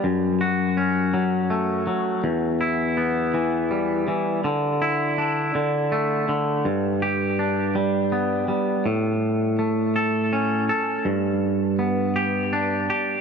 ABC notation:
X:1
M:6/8
L:1/8
Q:3/8=54
K:Amix
V:1 name="Clean electric guitar"
F,, F C F, A, F, | E,, E B, E, G, E, | D, E D D, A, D, | G,, G D G, B, G, |
A,,2 A, A C A | G,,2 B, G D G |]